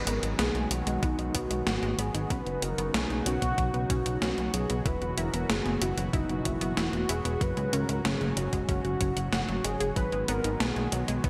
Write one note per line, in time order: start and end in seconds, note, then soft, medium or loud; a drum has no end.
0.00 2.28 D#3 medium
0.00 2.28 F#3 medium
0.00 2.28 G#3 medium
0.00 4.82 B3 medium
0.00 11.30 F#4 medium
0.07 0.19 G#1 loud
0.07 0.21 B3 loud
0.07 0.39 A#4 medium
0.07 closed hi-hat medium
0.23 0.35 G#1 medium
0.23 0.32 D#4 medium
0.23 closed hi-hat medium
0.39 0.51 B1 loud
0.39 0.48 B3 loud
0.39 0.69 G#4 medium
0.39 snare loud
0.39 closed hi-hat medium
0.55 0.67 B1 medium
0.55 0.61 G#3 medium
0.55 closed hi-hat soft
0.71 0.83 B1 medium
0.71 0.80 F#3 medium
0.71 1.05 F#4 medium
0.71 closed hi-hat medium
0.87 0.99 B1 medium
0.87 0.92 G#3 loud
0.87 closed hi-hat medium
1.03 1.15 B1 loud
1.03 1.08 B3 loud
1.03 1.36 D#4 medium
1.03 kick loud
1.03 closed hi-hat medium
1.19 1.31 B1 medium
1.19 1.28 D#4 medium
1.19 closed hi-hat soft
1.35 1.47 B1 loud
1.35 1.44 B3 loud
1.35 1.66 F#4 medium
1.35 kick medium
1.35 closed hi-hat medium
1.51 1.63 B1 medium
1.51 1.60 G#3 medium
1.51 closed hi-hat medium
1.67 1.79 G#1 medium
1.67 1.72 F#3 medium
1.67 1.96 F#4 medium
1.67 snare loud
1.67 closed hi-hat medium
1.83 1.94 G#1 medium
1.83 1.92 G#3 loud
1.83 closed hi-hat soft
1.98 2.10 G#1 medium
1.98 2.12 B3 loud
1.98 2.32 G#4 medium
1.98 closed hi-hat medium
2.14 2.26 G#1 medium
2.14 2.24 D#4 medium
2.14 closed hi-hat medium
2.30 2.42 B1 loud
2.30 4.83 C#3 medium
2.30 7.37 F#3 medium
2.30 2.40 C#4 loud
2.30 4.83 D#4 medium
2.30 2.64 B4 loud
2.30 kick loud
2.30 closed hi-hat medium
2.46 2.58 F#1 medium
2.46 2.52 B3 medium
2.46 closed hi-hat soft
2.62 2.74 F#1 loud
2.62 2.72 F#3 medium
2.62 2.96 A#4 loud
2.62 closed hi-hat medium
2.78 2.90 F#1 medium
2.78 2.84 B3 medium
2.78 closed hi-hat medium
2.94 3.06 B1 loud
2.94 3.00 C#4 loud
2.94 3.25 G#4 medium
2.94 snare loud
2.94 closed hi-hat medium
3.10 3.22 B1 medium
3.10 3.19 D#4 medium
3.10 closed hi-hat soft
3.26 3.38 B1 medium
3.26 3.35 C#4 loud
3.26 4.18 F#4 loud
3.26 closed hi-hat loud
3.42 3.54 B1 medium
3.42 3.51 B3 medium
3.42 kick medium
3.42 closed hi-hat medium
3.58 3.70 B1 loud
3.58 3.64 F#3 medium
3.58 kick loud
3.58 closed hi-hat medium
3.74 3.86 B1 medium
3.74 3.83 B3 loud
3.74 closed hi-hat soft
3.90 4.02 B1 medium
3.90 4.04 C#4 loud
3.90 kick loud
3.90 closed hi-hat medium
4.06 4.18 B1 medium
4.06 4.15 D#4 medium
4.06 closed hi-hat medium
4.22 4.34 B1 loud
4.22 4.31 C#4 loud
4.22 4.52 F#4 medium
4.22 snare loud
4.22 closed hi-hat medium
4.38 4.50 B1 medium
4.38 4.43 B3 medium
4.38 closed hi-hat soft
4.54 4.66 B1 medium
4.54 4.63 F#3 medium
4.54 4.87 G#4 loud
4.54 closed hi-hat medium
4.70 4.82 B1 medium
4.70 4.75 B3 medium
4.70 closed hi-hat medium
4.86 4.98 E1 loud
4.86 7.38 B2 medium
4.86 7.38 E3 medium
4.86 7.38 B3 medium
4.86 4.91 E4 loud
4.86 5.19 B4 loud
4.86 kick loud
4.86 closed hi-hat medium
5.02 5.14 E1 medium
5.02 5.11 F#4 medium
5.02 closed hi-hat soft
5.18 5.30 E1 loud
5.18 5.27 E4 loud
5.18 5.51 A#4 loud
5.18 closed hi-hat medium
5.34 5.46 E1 medium
5.34 5.43 B3 medium
5.34 closed hi-hat medium
5.50 5.62 F#1 medium
5.50 5.55 F#3 medium
5.50 5.81 G#4 loud
5.50 snare loud
5.50 closed hi-hat medium
5.66 5.78 F#1 medium
5.66 5.75 B3 loud
5.66 closed hi-hat soft
5.82 5.93 F#1 medium
5.82 5.95 E4 loud
5.82 6.11 F#4 medium
5.82 closed hi-hat loud
5.98 6.09 F#1 medium
5.98 6.07 F#4 medium
5.98 closed hi-hat medium
6.13 6.25 F#1 loud
6.13 6.47 D#4 medium
6.13 6.23 E4 loud
6.13 kick loud
6.13 closed hi-hat soft
6.29 6.41 F#1 medium
6.29 6.35 B3 medium
6.29 closed hi-hat soft
6.45 6.57 F#1 loud
6.45 6.55 F#3 medium
6.45 6.77 E4 medium
6.45 kick medium
6.45 closed hi-hat medium
6.61 6.73 F#1 medium
6.61 6.67 B3 loud
6.61 closed hi-hat soft
6.77 6.89 E1 loud
6.77 6.83 E4 loud
6.77 7.11 F#4 medium
6.77 snare loud
6.77 closed hi-hat medium
6.93 7.05 E1 medium
6.93 7.02 F#4 medium
6.93 closed hi-hat soft
7.09 7.21 E1 medium
7.09 7.18 E4 loud
7.09 7.43 G#4 medium
7.09 closed hi-hat medium
7.25 7.37 E1 medium
7.25 7.34 B3 medium
7.25 closed hi-hat medium
7.41 7.53 F#1 loud
7.41 9.94 G#2 medium
7.41 9.94 C#3 medium
7.41 7.47 F#3 medium
7.41 11.30 F#3 medium
7.41 9.94 C#4 medium
7.41 7.75 B4 loud
7.41 kick loud
7.41 closed hi-hat medium
7.57 7.69 C#2 medium
7.57 7.66 G#3 loud
7.57 closed hi-hat soft
7.73 7.85 C#2 loud
7.73 7.87 C#4 loud
7.73 8.06 A#4 loud
7.73 closed hi-hat medium
7.89 8.01 C#2 medium
7.89 7.98 F#4 medium
7.89 closed hi-hat medium
8.05 8.17 F#1 loud
8.05 8.14 C#4 loud
8.05 8.39 G#4 medium
8.05 snare loud
8.05 closed hi-hat medium
8.21 8.33 F#1 medium
8.21 8.26 G#3 medium
8.21 closed hi-hat soft
8.37 8.49 F#1 loud
8.37 8.46 F#3 medium
8.37 8.68 F#4 medium
8.37 closed hi-hat medium
8.53 8.65 F#1 medium
8.53 8.58 G#3 loud
8.53 kick medium
8.53 closed hi-hat soft
8.69 8.81 F#1 loud
8.69 8.74 C#4 loud
8.69 9.29 F#4 loud
8.69 kick loud
8.69 closed hi-hat soft
8.85 8.97 F#1 medium
8.85 8.94 F#4 medium
8.85 closed hi-hat soft
9.01 9.13 F#1 loud
9.01 9.14 C#5 medium
9.01 kick loud
9.01 closed hi-hat medium
9.17 9.29 F#1 medium
9.17 9.26 F#5 medium
9.17 closed hi-hat soft
9.33 9.45 F#1 loud
9.33 9.66 F#4 medium
9.33 9.46 F#5 medium
9.33 snare loud
9.33 closed hi-hat soft
9.48 9.61 F#1 medium
9.48 9.54 F#3 loud
9.48 closed hi-hat soft
9.64 9.77 F#1 loud
9.64 9.74 G#3 medium
9.64 9.96 G#4 loud
9.64 closed hi-hat medium
9.80 9.92 F#1 medium
9.80 9.86 G#4 loud
9.80 closed hi-hat soft
9.96 10.08 G#1 loud
9.96 11.30 D#3 medium
9.96 10.02 F#3 medium
9.96 11.30 G#3 medium
9.96 11.30 B3 medium
9.96 10.26 B4 loud
9.96 kick loud
9.96 closed hi-hat soft
10.12 10.24 G#1 medium
10.12 10.22 G#3 loud
10.12 closed hi-hat soft
10.28 10.40 G#1 loud
10.28 10.42 B3 loud
10.28 10.62 A#4 loud
10.28 closed hi-hat medium
10.44 10.56 G#1 medium
10.44 10.54 D#4 medium
10.44 closed hi-hat medium
10.60 10.72 B1 loud
10.60 10.69 B3 loud
10.60 10.94 G#4 loud
10.60 snare loud
10.60 closed hi-hat medium
10.76 10.88 B1 medium
10.76 10.82 G#3 medium
10.76 closed hi-hat soft
10.92 11.04 B1 medium
10.92 11.01 F#3 medium
10.92 11.26 F#4 medium
10.92 closed hi-hat medium
11.08 11.20 B1 medium
11.08 11.14 G#3 loud
11.08 closed hi-hat soft
11.24 11.30 B1 loud
11.24 11.30 B3 loud
11.24 11.30 D#4 loud
11.24 kick loud
11.24 closed hi-hat soft